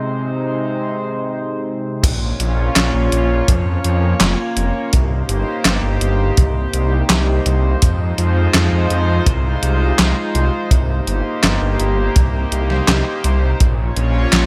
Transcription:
Already playing: analog synth pad C3 G#3 C4 D#4 C5
2.03 detuned saw bass A#1, analog synth pad A#3 C#4 F4 C#5, kick, closed hi-hat, crash
2.40 detuned saw bass A#1, closed hi-hat
2.76 detuned saw bass A#1, snare, clap, closed hi-hat
2.94 detuned saw bass A#1
3.12 detuned saw bass A#1, closed hi-hat
3.48 detuned saw bass F2, kick, closed hi-hat
3.84 detuned saw bass F2, closed hi-hat
4.20 detuned saw bass F1, snare, clap, closed hi-hat
4.57 detuned saw bass F1, closed hi-hat
4.93 detuned saw bass C2, analog synth pad D#4 G4 C5, kick, closed hi-hat
5.29 detuned saw bass G1, closed hi-hat
5.65 detuned saw bass G1, snare, clap, closed hi-hat
5.83 detuned saw bass G1
6.01 detuned saw bass G1, closed hi-hat
6.37 detuned saw bass C2, kick, closed hi-hat
6.74 detuned saw bass C2, closed hi-hat
7.10 detuned saw bass C2, snare, clap, closed hi-hat
7.46 detuned saw bass C2, closed hi-hat
7.82 detuned saw bass F2, analog synth pad G#3 F4, kick, closed hi-hat
8.18 detuned saw bass F2, closed hi-hat
8.54 detuned saw bass F2, snare, clap, closed hi-hat
8.72 detuned saw bass F2
8.90 detuned saw bass F2, closed hi-hat
9.26 detuned saw bass C2, kick, closed hi-hat
9.63 detuned saw bass C2, closed hi-hat
9.99 detuned saw bass C2, snare, clap, closed hi-hat
10.35 detuned saw bass C2, closed hi-hat
10.71 detuned saw bass C2, analog synth pad A#3 G4, kick, closed hi-hat
11.07 detuned saw bass G1, closed hi-hat
11.44 detuned saw bass G1, snare, clap, closed hi-hat
11.62 detuned saw bass G1
11.80 detuned saw bass G1, closed hi-hat
12.16 detuned saw bass C2, kick, closed hi-hat
12.52 detuned saw bass C2, closed hi-hat
12.70 snare
12.88 detuned saw bass C2, snare, clap, closed hi-hat
13.24 detuned saw bass C2, closed hi-hat
13.60 detuned saw bass A#1, analog synth pad A#3 C#4 F4 C#5, kick, closed hi-hat
13.96 detuned saw bass A#1, closed hi-hat
14.33 detuned saw bass A#1, snare, clap, closed hi-hat

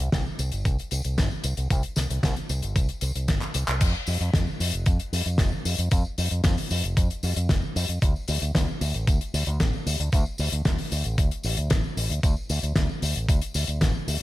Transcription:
0.00 fingered electric bass C2, closed hi-hat, tambourine
0.12 fingered electric bass C2, kick, snare, closed hi-hat, tambourine
0.26 tambourine
0.39 fingered electric bass C2, closed hi-hat, tambourine
0.52 fingered electric bass G1, closed hi-hat, tambourine
0.65 fingered electric bass C2, kick, closed hi-hat, tambourine
0.79 closed hi-hat, tambourine
0.91 fingered electric bass C2, closed hi-hat, tambourine
1.04 fingered electric bass C2, closed hi-hat, tambourine
1.18 fingered electric bass G1, kick, snare, closed hi-hat, tambourine
1.31 tambourine
1.44 fingered electric bass C2, closed hi-hat, tambourine
1.57 fingered electric bass C2, closed hi-hat, tambourine
1.70 fingered electric bass C2, kick, closed hi-hat, tambourine
1.83 closed hi-hat, tambourine
1.96 fingered electric bass C2, snare, closed hi-hat, tambourine
2.10 fingered electric bass C2, closed hi-hat, tambourine
2.23 fingered electric bass C2, kick, snare, closed hi-hat, tambourine
2.36 closed hi-hat, tambourine
2.49 fingered electric bass C2, closed hi-hat, tambourine
2.62 fingered electric bass G1, closed hi-hat, tambourine
2.75 fingered electric bass C2, kick, closed hi-hat, tambourine
2.89 closed hi-hat, tambourine
3.01 fingered electric bass C2, closed hi-hat, tambourine
3.15 fingered electric bass C2, closed hi-hat, tambourine
3.28 fingered electric bass G1, kick, snare, closed hi-hat, tambourine
3.41 clap, closed hi-hat, tambourine
3.54 fingered electric bass C2, closed hi-hat, tambourine
3.68 fingered electric bass C2, clap, closed hi-hat, tambourine
3.81 fingered electric bass F2, kick, closed hi-hat, crash, tambourine
3.94 tambourine
4.07 fingered electric bass F2, open hi-hat, tambourine
4.21 fingered electric bass F2, closed hi-hat, tambourine
4.33 fingered electric bass F2, kick, snare, closed hi-hat, tambourine
4.47 tambourine
4.60 fingered electric bass F2, open hi-hat, tambourine
4.72 fingered electric bass F1, closed hi-hat, tambourine
4.86 fingered electric bass F2, kick, closed hi-hat, tambourine
4.99 closed hi-hat, tambourine
5.13 fingered electric bass F2, open hi-hat, tambourine
5.26 fingered electric bass F2, closed hi-hat, tambourine
5.38 fingered electric bass F1, kick, snare, closed hi-hat, tambourine
5.52 tambourine
5.65 fingered electric bass F2, open hi-hat, tambourine
5.78 fingered electric bass F2, closed hi-hat, tambourine
5.91 fingered electric bass F2, kick, closed hi-hat, tambourine
6.05 tambourine
6.18 fingered electric bass F2, open hi-hat, tambourine
6.31 fingered electric bass F2, closed hi-hat, tambourine
6.44 fingered electric bass F2, kick, snare, closed hi-hat, tambourine
6.57 open hi-hat, tambourine
6.71 fingered electric bass F2, open hi-hat, tambourine
6.83 fingered electric bass F1, closed hi-hat, tambourine
6.97 fingered electric bass F2, kick, closed hi-hat, tambourine
7.10 closed hi-hat, tambourine
7.23 fingered electric bass F2, open hi-hat, tambourine
7.36 fingered electric bass F2, closed hi-hat, tambourine
7.49 fingered electric bass F1, kick, snare, closed hi-hat, tambourine
7.62 tambourine
7.76 fingered electric bass F2, open hi-hat, tambourine
7.89 fingered electric bass F2, closed hi-hat, tambourine
8.02 fingered electric bass D2, kick, closed hi-hat, tambourine
8.16 tambourine
8.28 fingered electric bass D2, open hi-hat, tambourine
8.42 fingered electric bass D2, closed hi-hat, tambourine
8.55 fingered electric bass D2, kick, snare, closed hi-hat, tambourine
8.68 tambourine
8.81 fingered electric bass D2, open hi-hat, tambourine
8.94 fingered electric bass A1, closed hi-hat, tambourine
9.07 fingered electric bass D2, kick, closed hi-hat, tambourine
9.21 closed hi-hat, tambourine
9.34 fingered electric bass D2, open hi-hat, tambourine
9.46 fingered electric bass D2, closed hi-hat, tambourine
9.60 fingered electric bass A1, kick, snare, closed hi-hat, tambourine
9.73 tambourine
9.86 fingered electric bass D2, open hi-hat, tambourine
10.00 fingered electric bass D2, closed hi-hat, tambourine
10.12 fingered electric bass D2, kick, closed hi-hat, tambourine
10.26 tambourine
10.38 fingered electric bass D2, open hi-hat, tambourine
10.52 fingered electric bass D2, closed hi-hat, tambourine
10.65 fingered electric bass D2, kick, snare, closed hi-hat, tambourine
10.78 open hi-hat, tambourine
10.92 fingered electric bass D2, open hi-hat, tambourine
11.04 fingered electric bass A1, closed hi-hat, tambourine
11.18 fingered electric bass D2, kick, closed hi-hat, tambourine
11.31 closed hi-hat, tambourine
11.44 fingered electric bass A1, open hi-hat, tambourine
11.57 fingered electric bass D2, closed hi-hat, tambourine
11.70 fingered electric bass A1, kick, snare, closed hi-hat, tambourine
11.84 tambourine
11.97 fingered electric bass A1, open hi-hat, tambourine
12.10 fingered electric bass D2, closed hi-hat, tambourine
12.23 fingered electric bass D2, kick, closed hi-hat, tambourine
12.37 tambourine
12.49 fingered electric bass D2, open hi-hat, tambourine
12.62 fingered electric bass D2, closed hi-hat, tambourine
12.76 fingered electric bass D2, kick, snare, closed hi-hat, tambourine
12.89 tambourine
13.02 fingered electric bass D2, open hi-hat, tambourine
13.15 fingered electric bass A1, closed hi-hat, tambourine
13.28 fingered electric bass D2, kick, closed hi-hat, tambourine
13.42 closed hi-hat, tambourine
13.54 fingered electric bass D2, open hi-hat, tambourine
13.67 fingered electric bass D2, closed hi-hat, tambourine
13.81 fingered electric bass A1, kick, snare, closed hi-hat, tambourine
13.94 tambourine
14.08 fingered electric bass D2, open hi-hat, tambourine

